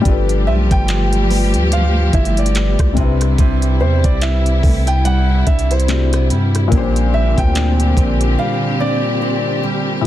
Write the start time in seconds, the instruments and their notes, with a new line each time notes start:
Already playing: string section G3, nylon-string guitar C4 G4
0.01 808-style bass G1, nylon-string guitar G2, string section F3 A3, felt piano G3 D4 G4, kick, closed hi-hat
0.05 felt piano F4 A4, string section G4
0.11 felt piano B4
0.29 closed hi-hat
0.47 808-style bass B1, nylon-string guitar F3, grand piano E5
0.71 808-style bass G1, grand piano G5, kick, closed hi-hat
0.88 clap, closed hi-hat
1.13 closed hi-hat
1.30 nylon-string guitar B3, open hi-hat
1.54 808-style bass D2, closed hi-hat
1.72 nylon-string guitar F3, grand piano F5, closed hi-hat
2.13 808-style bass G1, nylon-string guitar E4, grand piano E5, kick, closed hi-hat
2.25 closed hi-hat
2.37 grand piano D5, closed hi-hat
2.46 closed hi-hat
2.55 nylon-string guitar B3, clap, closed hi-hat
2.79 808-style bass C2, kick, cross-stick, closed hi-hat
2.93 felt piano C3 G3, string section C3
2.97 nylon-string guitar C3, felt piano D4 E4, string section E4, kick, closed hi-hat
3.02 felt piano B4
3.21 cross-stick, closed hi-hat
3.38 808-style bass C2, nylon-string guitar C3, kick, closed hi-hat
3.62 closed hi-hat
3.80 808-style bass E2, nylon-string guitar G3, grand piano C5
4.04 808-style bass C2, grand piano D5, kick, closed hi-hat
4.22 nylon-string guitar E4, grand piano E5, clap, closed hi-hat
4.46 closed hi-hat
4.63 808-style bass C2, nylon-string guitar A3, kick, open hi-hat
4.87 nylon-string guitar B3, grand piano G5, closed hi-hat
5.05 nylon-string guitar G3, grand piano F#5, closed hi-hat
5.47 808-style bass C2, nylon-string guitar D4, grand piano E5, kick, closed hi-hat
5.59 closed hi-hat
5.71 nylon-string guitar E4, grand piano C5, closed hi-hat
5.80 closed hi-hat
5.87 felt piano C3 G3 D4 E4, nylon-string guitar A3, clap, closed hi-hat
5.92 felt piano F#4
6.13 nylon-string guitar B3, cross-stick, closed hi-hat
6.30 808-style bass G2, nylon-string guitar G3, closed hi-hat
6.55 cross-stick, closed hi-hat
6.68 felt piano A#2 A#3, string section D3
6.72 808-style bass A#1, nylon-string guitar A#2, string section C4 G4, felt piano C#4 G4, kick, closed hi-hat
6.77 felt piano D4 C5
6.96 closed hi-hat
7.14 nylon-string guitar G3, grand piano E5
7.38 808-style bass D2, grand piano G5, kick, closed hi-hat
7.55 nylon-string guitar D4, clap, closed hi-hat
7.80 closed hi-hat
7.97 808-style bass A#1, nylon-string guitar C4, kick, closed hi-hat
8.21 closed hi-hat
8.39 nylon-string guitar G3, grand piano F5
8.80 nylon-string guitar D4, grand piano D5
9.22 nylon-string guitar C4
9.63 nylon-string guitar G3
10.01 felt piano A2 A3